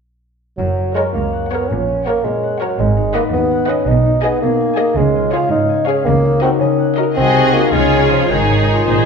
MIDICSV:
0, 0, Header, 1, 9, 480
1, 0, Start_track
1, 0, Key_signature, 6, "major"
1, 0, Tempo, 373367
1, 753, Time_signature, 6, 3, 24, 8
1, 2186, Tempo, 363636
1, 6501, Key_signature, -5, "major"
1, 8906, Tempo, 379267
1, 11770, End_track
2, 0, Start_track
2, 0, Title_t, "Violin section"
2, 0, Program_c, 0, 48
2, 1226, Note_on_c, 0, 78, 31
2, 1408, Note_off_c, 0, 78, 0
2, 1959, Note_on_c, 0, 78, 36
2, 2130, Note_off_c, 0, 78, 0
2, 2665, Note_on_c, 0, 78, 33
2, 2847, Note_off_c, 0, 78, 0
2, 3391, Note_on_c, 0, 78, 38
2, 3568, Note_off_c, 0, 78, 0
2, 4099, Note_on_c, 0, 78, 35
2, 4278, Note_off_c, 0, 78, 0
2, 4801, Note_on_c, 0, 78, 43
2, 4987, Note_off_c, 0, 78, 0
2, 5533, Note_on_c, 0, 80, 40
2, 5716, Note_off_c, 0, 80, 0
2, 6245, Note_on_c, 0, 80, 47
2, 6431, Note_off_c, 0, 80, 0
2, 6978, Note_on_c, 0, 77, 38
2, 7154, Note_off_c, 0, 77, 0
2, 7705, Note_on_c, 0, 77, 48
2, 7882, Note_off_c, 0, 77, 0
2, 8439, Note_on_c, 0, 75, 41
2, 8612, Note_off_c, 0, 75, 0
2, 9140, Note_on_c, 0, 75, 44
2, 9315, Note_off_c, 0, 75, 0
2, 9377, Note_on_c, 0, 75, 38
2, 10037, Note_off_c, 0, 75, 0
2, 10093, Note_on_c, 0, 73, 38
2, 10785, Note_off_c, 0, 73, 0
2, 10800, Note_on_c, 0, 73, 34
2, 11522, Note_off_c, 0, 73, 0
2, 11527, Note_on_c, 0, 72, 33
2, 11770, Note_off_c, 0, 72, 0
2, 11770, End_track
3, 0, Start_track
3, 0, Title_t, "Violin section"
3, 0, Program_c, 1, 48
3, 1242, Note_on_c, 1, 73, 34
3, 1417, Note_off_c, 1, 73, 0
3, 1961, Note_on_c, 1, 73, 34
3, 2132, Note_off_c, 1, 73, 0
3, 2672, Note_on_c, 1, 73, 34
3, 2850, Note_off_c, 1, 73, 0
3, 3399, Note_on_c, 1, 73, 36
3, 3573, Note_off_c, 1, 73, 0
3, 4104, Note_on_c, 1, 75, 40
3, 4280, Note_off_c, 1, 75, 0
3, 4806, Note_on_c, 1, 75, 38
3, 4990, Note_off_c, 1, 75, 0
3, 5526, Note_on_c, 1, 75, 45
3, 5713, Note_off_c, 1, 75, 0
3, 6250, Note_on_c, 1, 75, 46
3, 6434, Note_off_c, 1, 75, 0
3, 6972, Note_on_c, 1, 73, 42
3, 7151, Note_off_c, 1, 73, 0
3, 7694, Note_on_c, 1, 73, 41
3, 7877, Note_off_c, 1, 73, 0
3, 8429, Note_on_c, 1, 70, 39
3, 8606, Note_off_c, 1, 70, 0
3, 9144, Note_on_c, 1, 70, 44
3, 9317, Note_off_c, 1, 70, 0
3, 9383, Note_on_c, 1, 68, 37
3, 10040, Note_off_c, 1, 68, 0
3, 10085, Note_on_c, 1, 68, 32
3, 10800, Note_off_c, 1, 68, 0
3, 10820, Note_on_c, 1, 68, 33
3, 11526, Note_off_c, 1, 68, 0
3, 11541, Note_on_c, 1, 68, 27
3, 11770, Note_off_c, 1, 68, 0
3, 11770, End_track
4, 0, Start_track
4, 0, Title_t, "Harp"
4, 0, Program_c, 2, 46
4, 750, Note_on_c, 2, 42, 35
4, 987, Note_on_c, 2, 61, 25
4, 1230, Note_on_c, 2, 70, 30
4, 1466, Note_on_c, 2, 73, 28
4, 1708, Note_on_c, 2, 78, 27
4, 1933, Note_off_c, 2, 73, 0
4, 1948, Note_on_c, 2, 73, 31
4, 2190, Note_on_c, 2, 46, 32
4, 2203, Note_off_c, 2, 42, 0
4, 2413, Note_off_c, 2, 61, 0
4, 2429, Note_on_c, 2, 61, 23
4, 2668, Note_off_c, 2, 70, 0
4, 2684, Note_on_c, 2, 70, 32
4, 2900, Note_off_c, 2, 73, 0
4, 2916, Note_on_c, 2, 73, 29
4, 3139, Note_off_c, 2, 78, 0
4, 3155, Note_on_c, 2, 78, 28
4, 3379, Note_off_c, 2, 73, 0
4, 3395, Note_on_c, 2, 73, 31
4, 3622, Note_on_c, 2, 44, 38
4, 3650, Note_off_c, 2, 61, 0
4, 3650, Note_off_c, 2, 73, 0
4, 3651, Note_off_c, 2, 46, 0
4, 3657, Note_off_c, 2, 70, 0
4, 3855, Note_on_c, 2, 63, 26
4, 4097, Note_on_c, 2, 71, 30
4, 4338, Note_on_c, 2, 75, 31
4, 4554, Note_off_c, 2, 78, 0
4, 4570, Note_on_c, 2, 78, 32
4, 4796, Note_off_c, 2, 75, 0
4, 4811, Note_on_c, 2, 75, 32
4, 5046, Note_on_c, 2, 47, 41
4, 5073, Note_off_c, 2, 44, 0
4, 5073, Note_off_c, 2, 78, 0
4, 5278, Note_off_c, 2, 63, 0
4, 5294, Note_on_c, 2, 63, 30
4, 5525, Note_off_c, 2, 75, 0
4, 5541, Note_on_c, 2, 75, 35
4, 5783, Note_on_c, 2, 68, 39
4, 6021, Note_on_c, 2, 80, 33
4, 6249, Note_off_c, 2, 75, 0
4, 6265, Note_on_c, 2, 75, 35
4, 6503, Note_on_c, 2, 49, 43
4, 6515, Note_off_c, 2, 47, 0
4, 6517, Note_off_c, 2, 71, 0
4, 6518, Note_off_c, 2, 63, 0
4, 6522, Note_off_c, 2, 75, 0
4, 6743, Note_on_c, 2, 65, 32
4, 6972, Note_on_c, 2, 73, 36
4, 7219, Note_on_c, 2, 77, 39
4, 7437, Note_off_c, 2, 80, 0
4, 7453, Note_on_c, 2, 80, 36
4, 7689, Note_off_c, 2, 77, 0
4, 7705, Note_on_c, 2, 77, 36
4, 7930, Note_off_c, 2, 49, 0
4, 7946, Note_on_c, 2, 49, 46
4, 7959, Note_off_c, 2, 80, 0
4, 7961, Note_off_c, 2, 68, 0
4, 7962, Note_off_c, 2, 65, 0
4, 7964, Note_off_c, 2, 77, 0
4, 8182, Note_on_c, 2, 63, 31
4, 8438, Note_on_c, 2, 70, 39
4, 8666, Note_on_c, 2, 75, 35
4, 8904, Note_on_c, 2, 78, 33
4, 9126, Note_off_c, 2, 75, 0
4, 9141, Note_on_c, 2, 75, 34
4, 9374, Note_on_c, 2, 48, 46
4, 9393, Note_off_c, 2, 73, 0
4, 9397, Note_off_c, 2, 49, 0
4, 9401, Note_off_c, 2, 70, 0
4, 9601, Note_off_c, 2, 63, 0
4, 9617, Note_on_c, 2, 63, 28
4, 9849, Note_on_c, 2, 66, 28
4, 9856, Note_on_c, 2, 68, 29
4, 10090, Note_on_c, 2, 49, 36
4, 10103, Note_off_c, 2, 78, 0
4, 10104, Note_off_c, 2, 48, 0
4, 10105, Note_off_c, 2, 75, 0
4, 10106, Note_off_c, 2, 66, 0
4, 10108, Note_off_c, 2, 63, 0
4, 10338, Note_on_c, 2, 61, 27
4, 10563, Note_off_c, 2, 68, 0
4, 10572, Note_on_c, 2, 65, 28
4, 10581, Note_on_c, 2, 68, 29
4, 10815, Note_on_c, 2, 44, 35
4, 10836, Note_off_c, 2, 49, 0
4, 10836, Note_off_c, 2, 65, 0
4, 11033, Note_off_c, 2, 61, 0
4, 11048, Note_on_c, 2, 61, 26
4, 11284, Note_off_c, 2, 68, 0
4, 11293, Note_on_c, 2, 63, 25
4, 11299, Note_on_c, 2, 68, 26
4, 11530, Note_off_c, 2, 44, 0
4, 11545, Note_on_c, 2, 44, 35
4, 11559, Note_off_c, 2, 61, 0
4, 11770, Note_off_c, 2, 44, 0
4, 11770, Note_off_c, 2, 63, 0
4, 11770, Note_off_c, 2, 68, 0
4, 11770, End_track
5, 0, Start_track
5, 0, Title_t, "Viola section"
5, 0, Program_c, 3, 48
5, 1229, Note_on_c, 3, 70, 36
5, 1410, Note_off_c, 3, 70, 0
5, 1949, Note_on_c, 3, 70, 30
5, 2125, Note_off_c, 3, 70, 0
5, 2676, Note_on_c, 3, 70, 38
5, 2852, Note_off_c, 3, 70, 0
5, 3387, Note_on_c, 3, 70, 31
5, 3566, Note_off_c, 3, 70, 0
5, 4093, Note_on_c, 3, 71, 41
5, 4274, Note_off_c, 3, 71, 0
5, 4797, Note_on_c, 3, 71, 34
5, 4985, Note_off_c, 3, 71, 0
5, 5527, Note_on_c, 3, 68, 44
5, 5713, Note_off_c, 3, 68, 0
5, 6241, Note_on_c, 3, 68, 38
5, 6429, Note_off_c, 3, 68, 0
5, 6980, Note_on_c, 3, 68, 44
5, 7156, Note_off_c, 3, 68, 0
5, 7708, Note_on_c, 3, 68, 46
5, 7884, Note_off_c, 3, 68, 0
5, 8442, Note_on_c, 3, 66, 47
5, 8614, Note_off_c, 3, 66, 0
5, 9144, Note_on_c, 3, 66, 35
5, 9317, Note_off_c, 3, 66, 0
5, 9379, Note_on_c, 3, 66, 43
5, 10038, Note_off_c, 3, 66, 0
5, 10085, Note_on_c, 3, 65, 34
5, 10811, Note_on_c, 3, 63, 32
5, 10815, Note_off_c, 3, 65, 0
5, 11522, Note_off_c, 3, 63, 0
5, 11537, Note_on_c, 3, 63, 32
5, 11770, Note_off_c, 3, 63, 0
5, 11770, End_track
6, 0, Start_track
6, 0, Title_t, "Clarinet"
6, 0, Program_c, 4, 71
6, 11305, Note_on_c, 4, 65, 41
6, 11770, Note_off_c, 4, 65, 0
6, 11770, End_track
7, 0, Start_track
7, 0, Title_t, "Bassoon"
7, 0, Program_c, 5, 70
7, 744, Note_on_c, 5, 54, 48
7, 1196, Note_off_c, 5, 54, 0
7, 1223, Note_on_c, 5, 56, 45
7, 1333, Note_off_c, 5, 56, 0
7, 1461, Note_on_c, 5, 58, 43
7, 1934, Note_on_c, 5, 59, 49
7, 1954, Note_off_c, 5, 58, 0
7, 2171, Note_on_c, 5, 61, 59
7, 2191, Note_off_c, 5, 59, 0
7, 2669, Note_on_c, 5, 58, 50
7, 2689, Note_off_c, 5, 61, 0
7, 2903, Note_on_c, 5, 56, 47
7, 2923, Note_off_c, 5, 58, 0
7, 3380, Note_off_c, 5, 56, 0
7, 3388, Note_on_c, 5, 54, 49
7, 3634, Note_on_c, 5, 56, 55
7, 3653, Note_off_c, 5, 54, 0
7, 4093, Note_off_c, 5, 56, 0
7, 4100, Note_on_c, 5, 58, 51
7, 4208, Note_off_c, 5, 58, 0
7, 4332, Note_on_c, 5, 59, 51
7, 4817, Note_on_c, 5, 61, 55
7, 4837, Note_off_c, 5, 59, 0
7, 5058, Note_on_c, 5, 63, 62
7, 5078, Note_off_c, 5, 61, 0
7, 5531, Note_off_c, 5, 63, 0
7, 5539, Note_on_c, 5, 59, 55
7, 5766, Note_off_c, 5, 59, 0
7, 5774, Note_on_c, 5, 58, 54
7, 6234, Note_off_c, 5, 58, 0
7, 6242, Note_on_c, 5, 58, 58
7, 6499, Note_on_c, 5, 56, 62
7, 6519, Note_off_c, 5, 58, 0
7, 6967, Note_off_c, 5, 56, 0
7, 6975, Note_on_c, 5, 65, 61
7, 7209, Note_off_c, 5, 65, 0
7, 7215, Note_on_c, 5, 63, 58
7, 7692, Note_on_c, 5, 61, 61
7, 7712, Note_off_c, 5, 63, 0
7, 7930, Note_on_c, 5, 58, 71
7, 7950, Note_off_c, 5, 61, 0
7, 8409, Note_off_c, 5, 58, 0
7, 8417, Note_on_c, 5, 60, 64
7, 8527, Note_off_c, 5, 60, 0
7, 8658, Note_on_c, 5, 61, 58
7, 9127, Note_off_c, 5, 61, 0
7, 9380, Note_on_c, 5, 60, 67
7, 9849, Note_on_c, 5, 58, 57
7, 9868, Note_off_c, 5, 60, 0
7, 10089, Note_on_c, 5, 56, 53
7, 10108, Note_off_c, 5, 58, 0
7, 10563, Note_off_c, 5, 56, 0
7, 10570, Note_on_c, 5, 53, 44
7, 10817, Note_on_c, 5, 51, 46
7, 10836, Note_off_c, 5, 53, 0
7, 11770, Note_off_c, 5, 51, 0
7, 11770, End_track
8, 0, Start_track
8, 0, Title_t, "Cello section"
8, 0, Program_c, 6, 48
8, 751, Note_on_c, 6, 42, 43
8, 1322, Note_off_c, 6, 42, 0
8, 1477, Note_on_c, 6, 37, 38
8, 2038, Note_off_c, 6, 37, 0
8, 2188, Note_on_c, 6, 46, 39
8, 2759, Note_off_c, 6, 46, 0
8, 2913, Note_on_c, 6, 46, 43
8, 3482, Note_off_c, 6, 46, 0
8, 3636, Note_on_c, 6, 44, 42
8, 4194, Note_off_c, 6, 44, 0
8, 4346, Note_on_c, 6, 39, 44
8, 4910, Note_off_c, 6, 39, 0
8, 5068, Note_on_c, 6, 47, 48
8, 5636, Note_off_c, 6, 47, 0
8, 5789, Note_on_c, 6, 47, 44
8, 6355, Note_off_c, 6, 47, 0
8, 6509, Note_on_c, 6, 49, 51
8, 7069, Note_off_c, 6, 49, 0
8, 7230, Note_on_c, 6, 44, 54
8, 7796, Note_off_c, 6, 44, 0
8, 7954, Note_on_c, 6, 49, 51
8, 8522, Note_off_c, 6, 49, 0
8, 8666, Note_on_c, 6, 49, 45
8, 9228, Note_off_c, 6, 49, 0
8, 9383, Note_on_c, 6, 48, 43
8, 10040, Note_off_c, 6, 48, 0
8, 10093, Note_on_c, 6, 49, 38
8, 10819, Note_off_c, 6, 49, 0
8, 10823, Note_on_c, 6, 44, 33
8, 11533, Note_off_c, 6, 44, 0
8, 11545, Note_on_c, 6, 46, 36
8, 11770, Note_off_c, 6, 46, 0
8, 11770, End_track
9, 0, Start_track
9, 0, Title_t, "Double bass section"
9, 0, Program_c, 7, 48
9, 755, Note_on_c, 7, 30, 37
9, 1202, Note_off_c, 7, 30, 0
9, 2187, Note_on_c, 7, 34, 37
9, 2635, Note_off_c, 7, 34, 0
9, 3634, Note_on_c, 7, 32, 44
9, 4072, Note_off_c, 7, 32, 0
9, 5057, Note_on_c, 7, 35, 42
9, 5506, Note_off_c, 7, 35, 0
9, 6500, Note_on_c, 7, 37, 47
9, 6943, Note_off_c, 7, 37, 0
9, 7947, Note_on_c, 7, 37, 50
9, 8395, Note_off_c, 7, 37, 0
9, 9379, Note_on_c, 7, 36, 40
9, 9816, Note_off_c, 7, 36, 0
9, 10091, Note_on_c, 7, 37, 42
9, 10539, Note_off_c, 7, 37, 0
9, 10811, Note_on_c, 7, 32, 31
9, 11264, Note_off_c, 7, 32, 0
9, 11553, Note_on_c, 7, 32, 32
9, 11770, Note_off_c, 7, 32, 0
9, 11770, End_track
0, 0, End_of_file